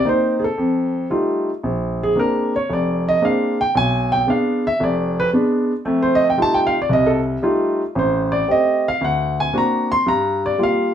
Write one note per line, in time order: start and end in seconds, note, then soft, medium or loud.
0.05 0.43 A#3 medium
0.05 0.43 C4 soft
0.05 0.44 D#4 medium
0.09 0.43 C5 medium
0.40 0.42 G#4 medium
0.44 1.08 A4 medium
0.58 1.04 F2 medium
1.10 1.49 G3 medium
1.10 1.49 A3 soft
1.10 1.49 D#4 medium
1.10 1.49 F4 medium
1.63 2.10 A#1 medium
2.03 2.18 G#4 medium
2.16 2.54 G#3 medium
2.16 2.54 A#3 soft
2.16 2.54 C4 soft
2.16 2.55 D4 medium
2.16 2.53 A#4 medium
2.56 2.70 C#5 medium
2.70 3.15 F1 medium
2.70 3.07 D5 medium
3.09 3.23 D#5 medium
3.21 3.60 G#3 medium
3.21 3.60 A#3 medium
3.21 3.60 C4 medium
3.21 3.60 D4 medium
3.21 3.59 F5 medium
3.61 3.76 G5 loud
3.75 4.21 B1 medium
3.75 4.11 G#5 loud
4.12 4.28 G5 loud
4.27 4.65 G#3 medium
4.27 4.65 B3 medium
4.27 4.66 D4 medium
4.27 4.64 F5 medium
4.67 4.81 E5 medium
4.80 5.26 F1 medium
4.80 5.17 D5 medium
5.20 5.29 B4 medium
5.33 5.71 G#3 medium
5.33 5.71 B3 medium
5.33 5.71 D4 medium
5.85 6.31 F2 medium
5.85 6.31 A3 medium
6.02 6.21 C5 medium
6.15 6.26 D#5 loud
6.30 6.38 G5 medium
6.37 6.75 G3 soft
6.37 6.76 A3 soft
6.37 6.76 D#4 soft
6.37 6.76 F4 medium
6.42 6.58 A5 loud
6.54 6.73 G5 medium
6.67 6.78 F5 medium
6.82 6.90 D5 medium
6.89 7.36 C2 medium
6.89 7.09 D#5 medium
7.07 7.18 A4 medium
7.42 7.81 G3 medium
7.42 7.81 A3 medium
7.42 7.81 D#4 medium
7.42 7.81 F4 medium
7.95 8.41 A1 medium
7.95 8.32 C5 medium
8.32 8.48 D5 medium
8.48 8.86 A3 soft
8.48 8.86 C4 medium
8.48 8.86 G4 medium
8.48 8.85 D#5 medium
8.88 9.02 F5 loud
9.01 9.47 D2 medium
9.01 9.38 F#5 medium
9.40 9.55 G#5 medium
9.53 9.91 A#3 medium
9.53 9.91 C4 medium
9.53 9.91 D4 medium
9.53 9.92 F#4 medium
9.58 9.91 A#5 medium
9.92 10.07 C6 loud
10.06 10.52 G2 medium
10.06 10.42 A#5 medium
10.46 10.60 D5 medium
10.58 10.94 G3 medium
10.58 10.94 A#3 soft
10.58 10.94 F4 medium
10.63 10.94 F5 medium